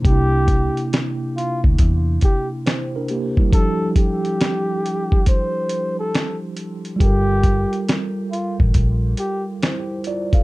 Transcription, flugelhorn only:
X:1
M:4/4
L:1/16
Q:"Swing 16ths" 1/4=69
K:Gdor
V:1 name="Flugelhorn"
G4 z2 F z3 G z4 z | A2 G6 c3 A2 z3 | G4 z2 F z3 G z4 z |]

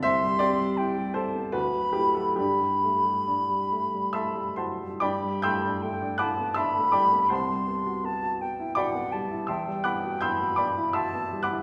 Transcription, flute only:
X:1
M:3/4
L:1/8
Q:1/4=80
K:G
V:1 name="Flute"
c'2 g a b2 | b4- b z | b2 g a b2 | c'2 a g f a |
g2 b2 a z |]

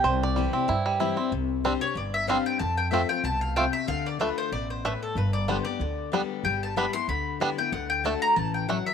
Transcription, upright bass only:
X:1
M:4/4
L:1/8
Q:"Swing" 1/4=187
K:C
V:1 name="Upright bass" clef=bass
C,,4 G,,4 | C,,4 G,,,4 | F,,4 C,,4 | D,,4 A,,,4 |
G,,,4 D,,4 | G,,,4 D,,4 | D,,4 A,,,4 |]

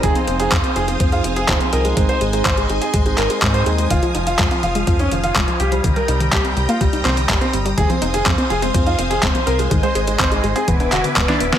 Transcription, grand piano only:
X:1
M:4/4
L:1/16
Q:1/4=124
K:Fm
V:1 name="Grand piano"
A C C A C C A C C F C A C C B A, | A, c A, A, c A, A, A A, A, B A, A, c A, A, | F F, F, F F, F, F F, F, D F, F F, F, G G, | G, B G, G, G G, G, F G, G, C G, G, C G, G, |
A C C A C C A C C F C A C C B A, | A, c A, A, c A, A, A =B, B, _G B, B, =D B, B, |]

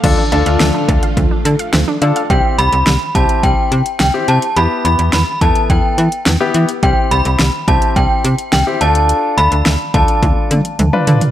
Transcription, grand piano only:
X:1
M:4/4
L:1/16
Q:1/4=106
K:Ddor
V:1 name="Grand piano"
[DFA] z [DFA]4- [DFA] z6 z [DFA] z | [CEG]4 z2 [CEG]4 z3 [CEG]2 z | [B,EG]4 z2 [B,EA]4 z3 [B,EG]2 z | [CEG]4 z2 [CEG]4 z3 [CEG] [DFA]2- |
[DFA]4 z2 [DFA]4 z3 [DFB]2 z |]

